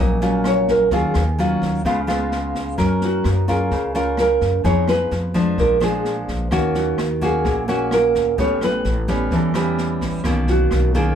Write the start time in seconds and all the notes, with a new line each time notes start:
Already playing: A#1 F#3 C#4 F4
0.00 A#2 D#5
0.21 F#3 C#4 F4, snare
0.44 C#5, cross-stick, snare
0.68 A#4, kick, snare
0.91 D#2 D#3 F#3 C#4 F4 G#4, kick, snare
1.14 D#2, cross-stick, snare
1.38 F#3 C#4 F4, snare
1.62 D#2, kick, snare
1.85 C#2 C#3 G#3 B3 F4, kick, snare
2.07 G#3 B3 F4, cross-stick, snare
2.32 snare
2.55 kick, snare
2.78 F#2 F#3 C#4 A#4, kick, cross-stick, snare
3.01 F#4, snare
3.24 F#2, cross-stick, snare
3.48 C#4 F4 G#4 A#4, kick, snare
3.71 C#2 C#3, kick, snare
3.94 C#4 F4 A#4, snare
4.17 A#4, cross-stick, snare
4.41 F#2, kick, snare
4.64 F2 F3 B3 D#4 G#4 C#5, kick, snare
4.88 B4, cross-stick, snare
5.11 F2, snare
5.34 F3 G#3 D4, kick, snare
5.58 A#1 A#2 A#4, kick, snare
5.80 F3 G#3 D4 G#4, cross-stick, snare
6.05 snare
6.28 A#1, kick, snare
6.51 D#2 D#3 A#3 C#4 F#4, kick, cross-stick, snare
6.74 F#4, snare
6.98 D#2, cross-stick, snare
7.21 A#3 C#4 F#4 G#4, kick, snare
7.45 A#1 A#2, kick, snare
7.68 A#3 C#4 F#4, snare
7.91 A#4, cross-stick, snare
8.15 D#2, kick, snare
8.38 A1 A2 G3 B3 C#4 C#5, kick, snare
8.61 B4, cross-stick, snare
8.85 A1, snare
9.08 G3 B3 C#4, kick, snare
9.31 E2 E3 A4, kick, snare
9.54 G3 B3 C#4 G4, cross-stick, snare
9.78 snare
10.01 A1, kick, snare
10.24 B1 B2 D#3 A#3 C#4, kick, cross-stick, snare
10.47 F#4, snare
10.71 B1, cross-stick, snare
10.94 D#3 A#3 C#4 G#4, kick, snare